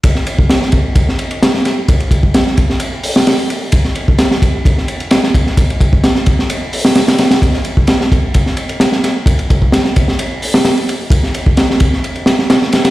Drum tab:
RD |x-x-x-x-x-xxx-x-|xxx-x-x-x---xxx-|x-x-x-x-x-xxx-x-|xxx-x-x-x---xxxx|
HH |----------------|----------o-----|----------------|----------o-----|
SD |-o--oo---o--ooo-|----oo-o---oo---|-o--oo---o--oo-o|----oo-o---ooooo|
BD |o--o--o-o-------|o-oo--o---------|o--o--o-o-----o-|o-oo--o---------|

RD |x-x-x-x-x-xxx-x-|xxx-x-x-x---xxx-|x-x-x-x-xxx-x-xx|
HH |----------------|----------o-----|----------------|
SD |-o--oo---o--ooo-|----oo-o---oo---|-o--oo-o--oooooo|
BD |o--o--o-o-------|o-oo--o---------|o--o--o---------|